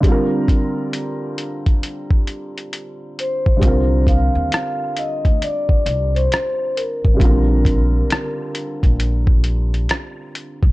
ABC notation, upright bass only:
X:1
M:4/4
L:1/16
Q:"Swing 16ths" 1/4=67
K:Bbmix
V:1 name="Upright bass" clef=bass
z16 | C,,3 E,, z3 D,, z2 C,,2 z3 =A,,, | B,,,4 z3 B,,,4- B,,, z3 =B,,, |]